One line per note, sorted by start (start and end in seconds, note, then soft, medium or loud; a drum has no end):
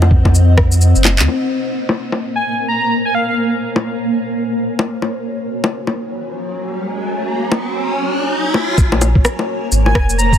0.00 0.94 F2 loud
0.00 1.28 C4 medium
0.00 5.03 C5 medium
0.00 2.39 D#5 medium
0.00 1.28 F#5 medium
0.00 low bongo medium
0.11 kick loud
0.25 kick medium
0.25 low bongo soft
0.35 shaker medium
0.58 kick loud
0.58 cross-stick loud
0.72 shaker medium
0.81 shaker medium
0.96 1.21 F#1 loud
0.96 shaker soft
1.05 clap medium
1.05 low bongo medium
1.05 shaker soft
1.19 1.27 D#2 loud
1.19 clap loud
1.28 5.87 A#3 medium
1.28 low bongo soft
1.42 6.23 A#4 medium
1.89 low bongo medium
2.12 low bongo soft
2.21 10.38 C#5 medium
2.36 2.42 G#5 medium
2.46 2.54 G#5 medium
2.68 2.93 A#5 medium
3.05 3.13 G#5 medium
3.15 3.24 F5 medium
3.28 3.35 F5 medium
3.76 low bongo medium
4.79 low bongo medium
5.02 8.78 F#4 medium
5.02 riser medium
5.02 low bongo soft
5.17 10.30 G#5 medium
5.64 low bongo medium
5.75 10.13 A#5 medium
5.87 low bongo soft
7.52 low bongo medium
8.54 low bongo medium
8.78 9.24 A#1 loud
8.78 10.38 A#3 medium
8.78 kick loud
8.78 shaker medium
8.92 10.38 A#4 medium
8.92 low bongo medium
9.01 low bongo medium
9.01 shaker medium
9.15 kick loud
9.25 cross-stick loud
9.25 shaker medium
9.39 10.38 C5 medium
9.39 low bongo soft
9.72 9.94 G#1 medium
9.72 shaker medium
9.86 9.92 G#5 medium
9.86 low bongo soft
9.95 10.38 F1 medium
9.95 10.04 G#5 medium
9.95 kick loud
9.95 cross-stick loud
10.10 shaker medium
10.18 10.38 A#5 medium
10.18 shaker medium
10.33 kick medium
10.33 shaker soft